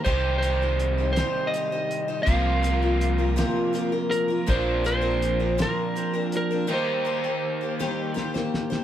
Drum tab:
HH |x-x-x-x-x-x-|x-x-x-x-x-x-|x-x-x-x-x-x-|------------|
SD |------o-----|------o-----|------o-----|------o-oooo|
BD |o-----------|o-----------|o-----------|------------|